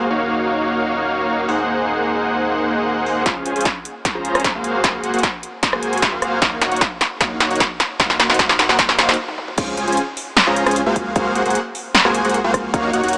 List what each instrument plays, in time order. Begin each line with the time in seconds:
0.10 sub bass D#2, supersaw synth A#3 D#4 F#4 C#5 F5
1.48 sub bass D#2, supersaw synth A#3 D#4 G#4 C5 F#5, open hi-hat
3.06 open hi-hat
3.26 sub bass C#2, supersaw synth C#4 F4 G#4 C5 F5, kick, snare, closed hi-hat
3.46 sub bass C#2, supersaw synth C#4 F4 G#4 C5 G#5, closed hi-hat
3.56 sub bass C#2, supersaw synth C#4 F4 G#4 C5 G#5, closed hi-hat
3.61 closed hi-hat
3.65 kick, snare, closed hi-hat
3.85 closed hi-hat
4.05 kick, snare, closed hi-hat
4.15 sub bass C#2, supersaw synth C#4 F4 G#4 C5 A#5
4.25 closed hi-hat
4.35 cross-stick, closed hi-hat
4.40 closed hi-hat
4.44 sub bass C#2, supersaw synth C#4 F4 G#4 C5 A#5, kick, snare, closed hi-hat
4.55 sub bass C#2, supersaw synth A#3 F#4 G#4 C5 F5
4.64 closed hi-hat
4.84 sub bass C#2, supersaw synth A#3 F#4 G#4 C5 F5, kick, snare, closed hi-hat
5.04 sub bass C#2, supersaw synth A#3 F#4 G#4 C5 F#5, closed hi-hat
5.14 sub bass C#2, supersaw synth A#3 F#4 G#4 C5 F#5, closed hi-hat
5.19 closed hi-hat
5.23 kick, snare, closed hi-hat
5.43 closed hi-hat
5.63 kick, snare, closed hi-hat
5.73 sub bass C#2, supersaw synth A#3 F#4 G#4 C5 G#5, cross-stick
5.83 closed hi-hat
5.93 closed hi-hat
5.98 closed hi-hat
6.02 sub bass C#2, supersaw synth A#3 F#4 G#4 C5 G#5, kick, snare, closed hi-hat
6.12 sub bass C#2, supersaw synth A#3 F#4 G#4 C5 F5
6.22 cross-stick, closed hi-hat
6.42 sub bass D#2, supersaw synth A#3 D#4 F#4 C#5 F5, kick, snare, closed hi-hat
6.62 sub bass D#2, supersaw synth A#3 D#4 F#4 C#5 F#5, snare, closed hi-hat
6.72 sub bass D#2, supersaw synth A#3 D#4 F#4 C#5 F#5, closed hi-hat
6.76 closed hi-hat
6.81 kick, snare, closed hi-hat
7.01 snare, closed hi-hat
7.21 sub bass D#2, supersaw synth A#3 D#4 F#4 C#5 F5, kick, snare, closed hi-hat
7.40 sub bass D#2, supersaw synth A#3 D#4 F#4 C#5 F#5, snare, closed hi-hat
7.50 sub bass D#2, supersaw synth A#3 D#4 F#4 C#5 F#5, closed hi-hat
7.56 closed hi-hat
7.60 kick, snare, closed hi-hat
7.80 snare, closed hi-hat
8.00 sub bass D#2, supersaw synth A#3 D#4 F#4 C5 F5, kick, snare, closed hi-hat
8.10 snare
8.20 sub bass D#2, supersaw synth A#3 D#4 F#4 C5 F#5, snare, closed hi-hat
8.30 sub bass D#2, supersaw synth A#3 D#4 F#4 C5 F#5, snare, closed hi-hat
8.34 closed hi-hat
8.39 sub bass D#2, supersaw synth A#3 D#4 F#4 C5 F5, kick, snare, closed hi-hat
8.49 snare
8.59 sub bass D#2, supersaw synth A#3 D#4 F#4 C5 F#5, snare, closed hi-hat
8.69 sub bass D#2, supersaw synth A#3 D#4 F#4 C5 F#5, snare
8.79 sub bass D#2, supersaw synth A#3 D#4 F#4 C5 F5, kick, snare, closed hi-hat
8.89 snare
8.99 sub bass D#2, supersaw synth A#3 D#4 F#4 C5 F5, snare, closed hi-hat
9.09 snare, closed hi-hat
9.14 closed hi-hat
9.28 high tom
9.38 mid tom
9.48 mid tom
9.58 sub bass C#2, supersaw synth C#4 F4 G#4 C5 F5, kick, closed hi-hat, crash
9.77 sub bass C#2, supersaw synth C#4 F4 G#4 C5 G#5, closed hi-hat
9.88 sub bass C#2, supersaw synth C#4 F4 G#4 C5 G#5, closed hi-hat
9.92 closed hi-hat
9.97 closed hi-hat
10.17 open hi-hat
10.37 snare, closed hi-hat
10.47 sub bass C#2, supersaw synth C#4 F4 G#4 C5 A#5
10.56 closed hi-hat
10.66 sub bass C#2, supersaw synth C#4 F4 G#4 C5 G#5, cross-stick, closed hi-hat
10.71 closed hi-hat
10.76 closed hi-hat
10.86 sub bass C#2, supersaw synth A#3 F#4 G#4 C5 F5
10.96 kick, closed hi-hat
11.16 sub bass C#2, supersaw synth A#3 F#4 G#4 C5 F5, kick, closed hi-hat
11.35 sub bass C#2, supersaw synth A#3 F#4 G#4 C5 F#5, closed hi-hat
11.46 sub bass C#2, supersaw synth A#3 F#4 G#4 C5 F#5, closed hi-hat
11.50 closed hi-hat
11.55 closed hi-hat
11.75 open hi-hat
11.95 snare, closed hi-hat
12.05 sub bass C#2, supersaw synth A#3 F#4 G#4 C5 G#5, cross-stick
12.15 closed hi-hat
12.25 sub bass C#2, supersaw synth A#3 F#4 G#4 C5 F#5, closed hi-hat
12.29 closed hi-hat
12.34 closed hi-hat
12.44 sub bass C#2, supersaw synth A#3 F#4 G#4 C5 F5
12.54 kick, cross-stick, closed hi-hat
12.73 sub bass D#2, supersaw synth A#3 D#4 F#4 C#5 F5, kick, closed hi-hat
12.93 sub bass D#2, supersaw synth A#3 D#4 F#4 C#5 F#5, closed hi-hat
13.04 sub bass D#2, supersaw synth A#3 D#4 F#4 C#5 F#5, closed hi-hat
13.08 closed hi-hat
13.13 closed hi-hat